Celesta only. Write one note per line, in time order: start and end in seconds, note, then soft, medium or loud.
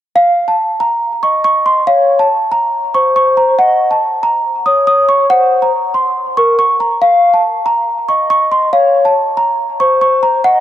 0.16 0.46 F5 loud
0.48 0.78 A5 medium
0.80 1.20 A#5 medium
1.23 1.40 C#6 medium
1.44 1.61 C#6 medium
1.66 1.83 C6 medium
1.87 2.17 F5 loud
2.19 2.50 A5 medium
2.52 2.92 A#5 medium
2.94 3.11 C#6 medium
3.16 3.33 C#6 medium
3.37 3.54 A#5 medium
3.59 3.89 F#5 medium
3.91 4.21 A5 medium
4.23 4.63 A#5 medium
4.66 4.83 D#6 medium
4.87 5.04 D#6 medium
5.09 5.26 C#6 medium
5.30 5.60 F#5 loud
5.62 5.92 A#5 medium
5.94 6.35 C6 medium
6.37 6.54 C#6 medium
6.59 6.76 C#6 medium
6.80 6.97 A#5 medium
7.02 7.32 F5 loud
7.34 7.64 A5 medium
7.66 8.06 A#5 medium
8.09 8.26 C#6 medium
8.30 8.47 C#6 medium
8.52 8.69 C6 medium
8.73 9.03 F5 medium
9.05 9.35 A5 medium
9.37 9.77 A#5 medium
9.80 9.97 C#6 medium
10.01 10.18 C#6 medium
10.23 10.40 A#5 medium
10.44 10.60 F#5 loud